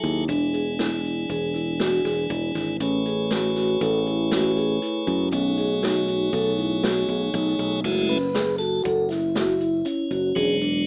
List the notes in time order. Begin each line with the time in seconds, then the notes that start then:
Already playing: F#3 E4 G#4 A4
0.04 D#2 E4, kick, closed hi-hat
0.28 E1 E3 D4 G#4, kick, closed hi-hat
0.54 G#4, closed hi-hat
0.79 E4, snare, closed hi-hat
1.04 E4, closed hi-hat
1.29 E1 G#4, kick, closed hi-hat
1.54 E4, closed hi-hat
1.79 F#4, snare, closed hi-hat
2.05 E1 G#4, kick, snare, closed hi-hat
2.30 E1 E4, kick, closed hi-hat
2.55 G#1 E4, kick, snare, closed hi-hat
2.80 A1 A3 C#4 G#4 B4 C#5, kick, closed hi-hat
3.06 G#4, closed hi-hat
3.31 F#4, snare, closed hi-hat
3.56 F#4, snare, closed hi-hat
3.81 A1 A4, kick, closed hi-hat
4.06 E4, closed hi-hat
4.31 F#4, snare, closed hi-hat
4.57 G#4, closed hi-hat
4.82 E4, closed hi-hat
5.07 F#2 E4, kick, closed hi-hat
5.31 B1 B2 A3 C#4 D#4 G#4 C#5, kick, closed hi-hat
5.57 G#4, closed hi-hat
5.82 F#4, snare, closed hi-hat
6.08 F#4, closed hi-hat
6.33 B1 A4, kick, closed hi-hat
6.58 E4, closed hi-hat
6.83 F#4, snare, closed hi-hat
7.09 B1 G#4, kick, closed hi-hat
7.34 B1 D#4, kick, closed hi-hat
7.59 B1 D#4, kick, closed hi-hat
7.84 F#1 G#3 A3 E4 F#4, kick, crash
8.09 C#4 B4, closed hi-hat
8.35 G#4, snare, closed hi-hat
8.59 F#4 A4, closed hi-hat
8.84 F#1 F#4 A4, kick, closed hi-hat
9.09 E4, snare, closed hi-hat
9.35 F#4, snare, closed hi-hat
9.60 E4, closed hi-hat
9.85 C#4 E4, closed hi-hat
10.11 F#1 F#4, kick, closed hi-hat
10.35 E1 F#3 G#3 D4 G#4, kick, closed hi-hat
10.61 D4, closed hi-hat